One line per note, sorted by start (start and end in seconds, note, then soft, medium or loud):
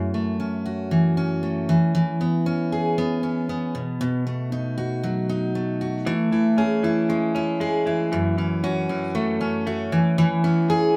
0.00 1.75 F#2 medium
0.00 0.14 C#4 soft
0.00 0.39 E4 medium
0.14 1.42 A3 soft
0.40 1.17 C#4 medium
0.66 1.74 F#4 medium
0.91 1.69 E3 medium
1.17 2.24 C#4 medium
1.43 1.74 A3 soft
1.69 1.94 E3 medium
1.95 3.80 E3 medium
2.21 2.98 B3 soft
2.46 3.22 C#4 medium
2.72 3.81 G#4 medium
2.98 3.49 B3 medium
3.23 3.80 C#4 medium
3.49 4.26 B3 medium
3.75 4.00 B2 medium
4.01 6.07 B2 medium
4.27 5.55 A3 medium
4.52 5.28 D#4 medium
4.78 5.80 F#4 medium
5.03 6.06 F#3 medium
5.29 6.12 D#4 medium
5.55 6.07 A3 medium
5.81 6.12 F#4 medium
6.06 6.32 E3 medium
6.06 8.12 A3 medium
6.32 6.83 E3 medium
6.32 6.84 E4 medium
6.58 7.34 C#4 medium
6.58 7.60 G#4 medium
6.83 7.86 E3 medium
6.83 7.35 E4 medium
7.09 7.59 G#3 soft
7.09 8.38 C#4 medium
7.35 8.63 C#4 soft
7.35 7.86 E4 medium
7.60 8.18 G#3 medium
7.60 8.18 G#4 medium
7.86 8.12 E3 medium
7.86 8.38 E4 soft
8.12 9.98 F#2 medium
8.12 8.37 E3 medium
8.38 8.89 E3 medium
8.38 8.89 C#4 soft
8.64 9.41 C#4 medium
8.64 9.66 F#4 medium
8.89 9.92 E3 medium
8.89 9.40 C#4 soft
9.15 9.98 A3 medium
9.15 9.65 A3 medium
9.41 10.44 C#4 medium
9.41 10.47 C#4 medium
9.67 9.98 A3 medium
9.67 9.98 F#4 medium
9.92 10.18 E3 medium
10.18 10.97 E3 medium
10.44 10.94 B3 medium
10.44 10.95 C#4 medium
10.70 10.97 G#4 medium